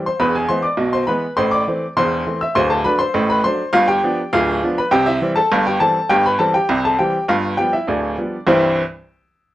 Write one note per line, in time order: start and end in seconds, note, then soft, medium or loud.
0.06 0.20 C5 medium
0.06 0.20 C6 medium
0.20 0.45 E1 medium
0.20 0.45 E2 loud
0.20 0.34 B4 medium
0.20 0.34 B5 loud
0.35 0.49 G#4 medium
0.35 0.50 G#5 medium
0.49 0.65 E3 medium
0.49 0.66 G#3 medium
0.49 0.66 B3 medium
0.49 0.63 C5 medium
0.49 0.64 C6 loud
0.63 0.91 D5 medium
0.63 0.91 D6 medium
0.78 1.03 B1 medium
0.78 1.03 B2 medium
0.93 1.08 C5 medium
0.93 1.08 C6 medium
1.07 1.24 E3 soft
1.07 1.24 G#3 medium
1.07 1.25 B3 medium
1.07 1.36 B4 medium
1.07 1.31 B5 loud
1.37 1.63 A1 medium
1.37 1.63 A2 loud
1.37 1.52 C5 medium
1.37 1.52 C6 loud
1.51 1.94 D5 medium
1.51 1.87 D6 loud
1.68 1.84 E3 medium
1.68 1.84 A3 medium
1.68 1.84 C4 medium
1.97 2.22 E1 medium
1.97 2.22 E2 loud
1.97 2.39 C5 medium
1.97 2.39 C6 loud
2.26 2.43 E3 medium
2.26 2.43 A3 medium
2.26 2.43 C4 medium
2.41 2.56 E5 medium
2.41 2.56 E6 loud
2.55 2.81 D1 loud
2.55 2.81 D2 loud
2.55 2.70 C5 loud
2.55 2.70 C6 loud
2.70 2.84 A4 medium
2.70 2.85 A5 loud
2.85 3.01 F#3 medium
2.85 3.02 A3 medium
2.85 3.02 D4 medium
2.85 2.99 B4 medium
2.85 3.00 B5 loud
2.99 3.28 C5 medium
2.99 3.28 C6 loud
3.14 3.40 A1 loud
3.14 3.40 A2 loud
3.30 3.44 B4 medium
3.30 3.44 B5 loud
3.44 3.61 F#3 medium
3.44 3.61 A3 medium
3.44 3.62 D4 medium
3.44 3.73 C5 medium
3.44 3.68 C6 loud
3.73 3.99 G1 loud
3.73 3.99 G2 loud
3.73 3.88 F4 loud
3.73 3.88 F5 loud
3.88 4.30 G4 medium
3.88 4.30 G5 loud
4.04 4.20 F3 medium
4.04 4.20 B3 medium
4.04 4.20 D4 medium
4.33 4.58 D1 loud
4.33 4.58 D2 loud
4.33 4.75 F4 loud
4.33 4.69 F5 loud
4.63 4.79 F3 medium
4.63 4.80 B3 medium
4.63 4.80 D4 medium
4.78 4.92 B4 medium
4.78 4.93 B5 loud
4.91 5.17 C2 loud
4.91 5.17 C3 loud
4.91 5.06 G4 loud
4.91 5.07 G5 loud
5.06 5.35 E4 medium
5.06 5.30 E5 loud
5.21 5.38 E3 medium
5.21 5.38 G3 medium
5.21 5.39 C4 medium
5.36 5.64 A4 medium
5.36 5.60 A5 loud
5.52 5.77 G1 loud
5.52 5.77 G2 loud
5.67 5.81 G4 medium
5.67 5.81 G5 loud
5.80 5.97 E3 medium
5.80 5.97 G3 medium
5.80 5.98 C4 medium
5.80 6.09 A4 medium
5.80 6.09 A5 loud
6.09 6.36 G1 loud
6.09 6.36 G2 loud
6.09 6.25 G4 medium
6.09 6.25 G5 loud
6.26 6.40 B4 medium
6.26 6.41 B5 loud
6.39 6.56 E3 medium
6.39 6.56 G3 medium
6.39 6.57 C4 medium
6.39 6.54 A4 medium
6.39 6.55 A5 medium
6.54 6.83 G4 medium
6.54 6.78 G5 loud
6.69 6.95 C2 loud
6.69 6.95 C3 loud
6.85 7.00 A4 medium
6.85 7.00 A5 loud
6.99 7.16 E3 medium
6.99 7.16 G3 medium
6.99 7.17 C4 medium
6.99 7.28 G4 medium
6.99 7.23 G5 loud
7.28 7.54 G1 medium
7.28 7.55 G2 loud
7.28 7.57 F4 medium
7.28 7.53 F5 loud
7.57 7.75 F3 medium
7.57 7.75 G3 medium
7.57 7.75 B3 medium
7.57 7.73 G4 medium
7.57 7.73 G5 loud
7.73 7.88 E4 medium
7.73 7.89 E5 medium
7.87 8.14 D1 medium
7.87 8.14 D2 medium
7.87 8.45 D4 medium
7.87 8.45 D5 medium
8.18 8.35 F3 soft
8.18 8.35 G3 soft
8.18 8.35 B3 soft
8.47 8.81 C2 loud
8.47 8.81 G2 loud
8.47 8.81 E3 loud
8.47 8.81 G3 medium
8.47 8.81 C4 loud
8.47 8.82 E4 loud
8.47 8.81 C5 medium